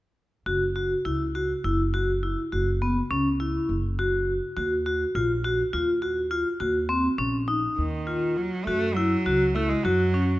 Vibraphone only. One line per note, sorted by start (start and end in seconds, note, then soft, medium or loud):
0.46 0.63 F#4 medium
0.76 0.92 F#4 medium
1.05 1.22 E4 medium
1.35 1.51 F#4 soft
1.64 1.81 E4 medium
1.94 2.10 F#4 medium
2.23 2.39 E4 soft
2.52 2.69 F#4 medium
2.82 2.98 B3 medium
3.11 3.27 C#4 medium
3.40 3.73 E4 soft
3.99 4.32 F#4 medium
4.57 4.73 F#4 medium
4.86 5.02 F#4 medium
5.15 5.31 F4 medium
5.44 5.61 F#4 medium
5.73 5.90 F4 medium
6.02 6.18 F#4 medium
6.31 6.47 F4 medium
6.60 6.76 F#4 medium
6.89 7.06 C4 medium
7.18 7.35 C#4 medium
7.48 7.81 D#4 soft
8.07 8.40 F4 soft
8.67 8.84 F#4 medium
8.97 9.13 E4 medium
9.26 9.43 F#4 medium
9.56 9.72 E4 medium
9.85 10.01 F#4 medium
10.14 10.39 C#4 medium